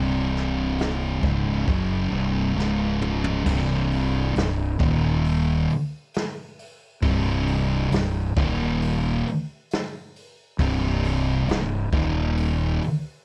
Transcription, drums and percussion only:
0.37 snare soft
0.78 snare loud
0.78 open hi-hat medium
1.23 kick loud
1.68 kick loud
1.68 open hi-hat medium
2.60 snare medium
3.02 mid tom medium
3.24 floor tom medium
3.46 kick loud
3.46 crash loud
3.91 open hi-hat medium
4.36 snare loud
4.36 open hi-hat medium
4.80 kick loud
4.80 open hi-hat medium
5.25 open hi-hat medium
5.70 open hi-hat medium
6.14 snare loud
6.14 open hi-hat medium
6.59 open hi-hat medium
7.03 kick loud
7.03 open hi-hat loud
7.47 open hi-hat medium
7.92 snare loud
7.92 open hi-hat loud
8.37 kick loud
8.37 open hi-hat medium
8.82 open hi-hat medium
9.27 open hi-hat medium
9.71 snare loud
9.71 open hi-hat loud
10.16 open hi-hat medium
10.59 kick loud
10.59 open hi-hat medium
11.04 open hi-hat medium
11.49 snare loud
11.49 open hi-hat medium
11.93 kick loud
11.93 open hi-hat medium
12.37 open hi-hat medium
12.82 open hi-hat medium

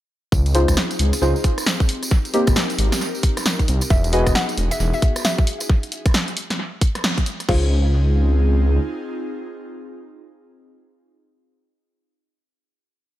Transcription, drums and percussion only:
0.32 kick loud
0.32 tambourine medium
0.46 closed hi-hat medium
0.46 tambourine soft
0.55 open hi-hat loud
0.68 kick medium
0.68 cross-stick medium
0.68 closed hi-hat medium
0.68 tambourine medium
0.77 snare loud
0.77 tambourine medium
0.91 closed hi-hat medium
0.91 tambourine soft
0.99 open hi-hat loud
1.13 open hi-hat medium
1.13 tambourine medium
1.22 tambourine medium
1.36 tambourine soft
1.44 kick loud
1.44 open hi-hat loud
1.58 cross-stick medium
1.58 closed hi-hat medium
1.58 tambourine medium
1.66 snare loud
1.66 tambourine medium
1.80 kick loud
1.80 tambourine soft
1.89 open hi-hat loud
2.03 closed hi-hat medium
2.03 tambourine medium
2.11 kick loud
2.11 tambourine medium
2.25 closed hi-hat soft
2.25 tambourine soft
2.34 open hi-hat loud
2.47 kick loud
2.47 cross-stick medium
2.47 closed hi-hat medium
2.47 tambourine medium
2.56 snare loud
2.56 tambourine medium
2.70 closed hi-hat medium
2.70 tambourine soft
2.79 open hi-hat loud
2.92 snare medium
2.92 open hi-hat medium
2.92 tambourine medium
3.01 tambourine medium
3.15 tambourine soft
3.23 kick loud
3.23 open hi-hat loud
3.37 cross-stick medium
3.37 closed hi-hat medium
3.37 tambourine medium
3.46 snare loud
3.46 tambourine medium
3.59 kick medium
3.59 closed hi-hat soft
3.59 tambourine soft
3.68 open hi-hat loud
3.81 closed hi-hat medium
3.81 tambourine medium
3.90 kick loud
3.90 tambourine medium
4.04 closed hi-hat medium
4.04 tambourine soft
4.13 open hi-hat loud
4.27 kick medium
4.27 cross-stick medium
4.27 closed hi-hat medium
4.27 tambourine medium
4.35 snare loud
4.35 tambourine medium
4.49 closed hi-hat medium
4.49 tambourine soft
4.58 open hi-hat loud
4.71 open hi-hat medium
4.71 tambourine medium
4.80 tambourine medium
4.93 tambourine soft
5.02 kick loud
5.02 open hi-hat loud
5.16 cross-stick medium
5.16 closed hi-hat medium
5.16 tambourine medium
5.25 snare loud
5.25 tambourine medium
5.38 kick loud
5.38 tambourine soft
5.47 open hi-hat loud
5.60 closed hi-hat medium
5.60 tambourine medium
5.69 kick loud
5.83 closed hi-hat medium
5.92 open hi-hat loud
6.06 kick loud
6.06 cross-stick medium
6.06 closed hi-hat medium
6.14 snare loud
6.28 closed hi-hat medium
6.37 open hi-hat loud
6.50 snare medium
6.50 open hi-hat medium
6.81 kick loud
6.81 open hi-hat loud
6.95 cross-stick medium
6.95 closed hi-hat medium
7.04 snare loud
7.18 kick medium
7.18 closed hi-hat soft
7.26 open hi-hat loud
7.40 closed hi-hat medium
7.49 kick loud
7.49 crash medium

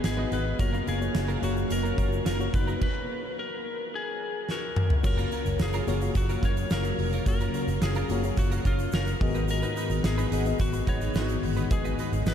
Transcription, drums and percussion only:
0.04 snare loud
0.04 closed hi-hat loud
0.32 closed hi-hat medium
0.59 kick loud
0.59 closed hi-hat medium
0.59 shaker medium
0.74 shaker soft
0.87 closed hi-hat medium
0.87 shaker soft
1.02 shaker soft
1.15 snare loud
1.15 closed hi-hat medium
1.15 shaker medium
1.29 shaker soft
1.43 closed hi-hat medium
1.43 shaker soft
1.57 shaker soft
1.70 closed hi-hat medium
1.70 shaker medium
1.85 shaker medium
1.98 kick medium
1.98 closed hi-hat medium
1.98 shaker soft
2.13 shaker medium
2.26 snare loud
2.26 closed hi-hat loud
2.26 shaker medium
2.40 shaker soft
2.54 kick loud
2.54 closed hi-hat medium
2.54 shaker soft
2.68 shaker soft
2.81 kick loud
2.81 crash medium
4.49 snare medium
4.76 mid tom loud
4.90 floor tom medium
5.04 kick loud
5.04 crash loud
5.04 shaker medium
5.18 closed hi-hat soft
5.18 shaker soft
5.31 closed hi-hat medium
5.31 shaker soft
5.46 closed hi-hat medium
5.46 shaker medium
5.59 snare loud
5.59 shaker medium
5.73 closed hi-hat medium
5.73 shaker medium
5.87 closed hi-hat medium
5.87 shaker soft
6.01 closed hi-hat soft
6.01 shaker medium
6.15 kick medium
6.15 closed hi-hat medium
6.15 shaker medium
6.29 closed hi-hat medium
6.29 shaker medium
6.43 kick loud
6.43 closed hi-hat medium
6.43 shaker soft
6.57 closed hi-hat medium
6.57 shaker soft
6.70 snare loud
6.70 shaker medium
6.84 closed hi-hat medium
6.84 shaker soft
6.99 open hi-hat medium
7.13 closed hi-hat medium
7.13 shaker soft
7.26 kick loud
7.26 closed hi-hat loud
7.26 shaker medium
7.40 closed hi-hat soft
7.40 shaker medium
7.54 closed hi-hat medium
7.54 shaker soft
7.68 closed hi-hat medium
7.68 shaker soft
7.82 snare loud
7.82 tambourine medium
7.82 shaker medium
7.95 closed hi-hat medium
7.95 shaker soft
8.09 closed hi-hat medium
8.09 shaker medium
8.23 closed hi-hat soft
8.23 shaker medium
8.37 kick medium
8.37 closed hi-hat loud
8.37 shaker medium
8.51 closed hi-hat medium
8.51 shaker medium
8.65 kick medium
8.65 closed hi-hat medium
8.65 shaker soft
8.79 closed hi-hat medium
8.79 shaker medium
8.92 snare loud
8.92 tambourine medium
8.92 shaker medium
9.06 closed hi-hat medium
9.06 shaker soft
9.21 kick loud
9.21 open hi-hat medium
9.34 closed hi-hat medium
9.34 shaker soft
9.48 closed hi-hat loud
9.48 shaker medium
9.62 closed hi-hat soft
9.62 shaker soft
9.76 closed hi-hat medium
9.76 shaker soft
9.90 closed hi-hat soft
9.90 shaker soft
10.04 snare loud
10.04 tambourine medium
10.04 shaker medium
10.18 closed hi-hat medium
10.18 shaker soft
10.32 closed hi-hat medium
10.32 shaker soft
10.45 closed hi-hat soft
10.45 shaker soft
10.59 kick loud
10.59 closed hi-hat medium
10.59 shaker medium
10.73 closed hi-hat medium
10.73 shaker medium
10.87 kick medium
10.87 closed hi-hat medium
10.87 shaker soft
11.01 closed hi-hat medium
11.01 shaker medium
11.14 snare loud
11.14 tambourine medium
11.14 shaker medium
11.28 closed hi-hat medium
11.28 shaker soft
11.43 open hi-hat medium
11.57 closed hi-hat medium
11.57 shaker soft
11.71 kick loud
11.71 closed hi-hat medium
11.71 shaker medium
11.85 closed hi-hat soft
11.85 shaker soft
11.98 closed hi-hat medium
11.98 shaker soft
12.13 closed hi-hat medium
12.13 shaker medium
12.26 snare loud
12.26 tambourine medium
12.26 shaker medium

